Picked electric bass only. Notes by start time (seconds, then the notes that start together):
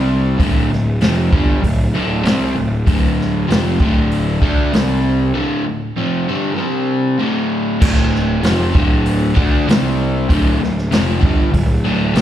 Already playing: C2
0.40 D1
0.70 D1
1.01 F1
1.33 G1
1.64 D1
1.94 D1
2.25 C2
2.56 D1
2.87 D1
3.49 F1
3.80 D1
4.42 D2
4.73 C2
7.82 D1
8.44 F1
8.75 D1
9.37 D2
9.68 C2
10.30 D1
10.61 D1
10.92 F1
11.23 G1
11.54 D1
11.85 D1
12.15 C2